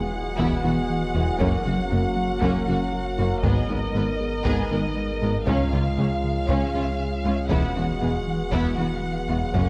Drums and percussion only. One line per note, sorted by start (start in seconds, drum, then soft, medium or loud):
0.39 taiko medium
1.40 taiko medium
2.42 taiko medium
3.43 taiko medium
4.45 taiko medium
5.47 taiko medium
6.49 taiko medium
7.50 taiko medium
8.52 taiko medium
9.54 taiko medium